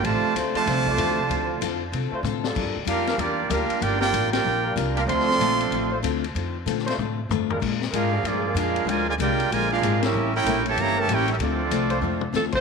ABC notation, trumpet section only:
X:1
M:4/4
L:1/8
Q:"Swing" 1/4=190
K:Dm
V:1 name="Trumpet section"
[Fcda]2 z [Fcda]4- [Fcda]- | [Fcda]3 z4 z | z2 [DGBf]2 [B,FGd]2 [DGBf]2 | [FBdg] [FBdg]2 [FBdg]3 z [DGBf] |
[Adfc']6 z2 | z8 | z2 [D_ABf]2 [B,FAd]2 [DABf]2 | [FBd_a] [FBda] [FBdg]2 [FBda] [D_ABf]2 [^CGBe]- |
[^CGBe] [EB^cg]2 [Gcea] [Gceb] [Gcea] [EBcg] [CGBe] | [CFAd]6 z2 |]